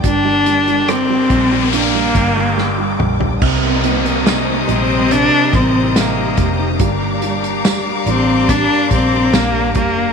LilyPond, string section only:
\new Staff \with { instrumentName = "String section" } { \time 4/4 \key c \dorian \tempo 4 = 71 << { <bes' d'''>1 | <c'' ees'''>1 | <d'' d'''>1 | } \\ { <ees g''>1 | <g' bes''>1~ | <g' bes''>1 | } >> }